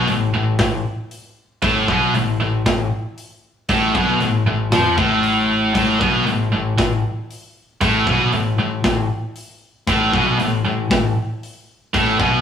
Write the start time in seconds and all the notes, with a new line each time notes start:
0.07 A1 A2, open hi-hat
0.34 A1 A2
0.59 A1 A2, kick, snare, open hi-hat
1.11 open hi-hat
1.62 A1 A2, kick, open hi-hat
1.88 B1 B2, kick
2.14 A1 A2, open hi-hat
2.40 A1 A2
2.66 A1 A2, kick, snare, open hi-hat
3.18 open hi-hat
3.69 A1 A2, kick, open hi-hat
3.95 B1 B2, kick
4.20 A1 A2, open hi-hat
4.46 A1 A2
4.72 F2 F3, snare, open hi-hat
4.98 A1 A2, kick
5.23 open hi-hat
5.75 A1 A2, kick, open hi-hat
6.01 B1 B2, kick
6.27 A1 A2, open hi-hat
6.52 A1 A2
6.78 A1 A2, kick, snare, open hi-hat
7.31 open hi-hat
7.81 A1 A2, kick, open hi-hat
8.07 B1 B2, kick
8.32 A1 A2, open hi-hat
8.57 A1 A2
8.84 A1 A2, kick, snare, open hi-hat
9.36 open hi-hat
9.87 A1 A2, kick, open hi-hat
10.13 B1 B2, kick
10.39 A1 A2, open hi-hat
10.64 A1 A2
10.90 A1 A2, kick, snare, open hi-hat
11.43 open hi-hat
11.94 A1 A2, kick, open hi-hat
12.20 B1 B2, kick